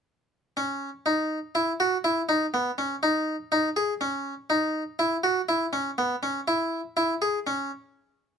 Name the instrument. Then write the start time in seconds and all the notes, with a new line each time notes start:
harpsichord
0.57 C#4
1.06 D#4
1.55 E4
1.80 F#4
2.04 E4
2.29 D#4
2.54 B3
2.78 C#4
3.03 D#4
3.52 D#4
3.76 G#4
4.01 C#4
4.50 D#4
4.99 E4
5.24 F#4
5.49 E4
5.73 C#4
5.98 B3
6.23 C#4
6.48 E4
6.97 E4
7.22 G#4
7.47 C#4